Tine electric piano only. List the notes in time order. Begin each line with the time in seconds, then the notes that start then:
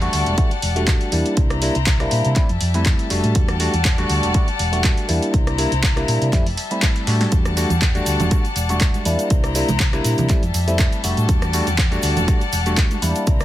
0.01 G3 A3 D4 F#4
0.37 G3 D4 F#4
0.76 G3 A3 D4 F#4
1.12 G3 A#3 D4 E4
1.62 G3 A#3 D4 E4
2.00 G3 A#3 D4 E4
2.36 G3 A3 C4 E4
2.74 G3 A3 C4 E4
3.10 G3 A3 D4 F#4
3.60 G3 A3 D4 F#4
3.98 G3 A3 D4 F#4
4.34 G3 A3 D4 F#4
4.72 G3 A3 D4 F#4
5.08 G3 A#3 D4 E4
5.58 G3 A#3 D4 E4
5.96 G3 A#3 D4 E4
6.32 G3 A3 C4 E4
6.71 G3 A3 C4 E4
7.07 G3 A3 D4 F#4
7.56 G3 A3 D4 F#4
7.95 G3 A3 D4 F#4
8.31 G3 A3 D4 F#4
8.69 G3 A3 D4 F#4
9.05 G3 A#3 D4 E4
9.55 G3 A#3 D4 E4
9.93 G3 A#3 D4 E4
10.29 G3 A3 C4 E4
10.67 G3 A3 C4 E4
11.04 G3 A3 D4 F#4
11.53 G3 A3 D4 F#4
11.91 G3 A3 D4 F#4
12.27 G3 A3 D4 F#4
12.66 G3 A3 D4 F#4
13.02 G3 A#3 D4 E4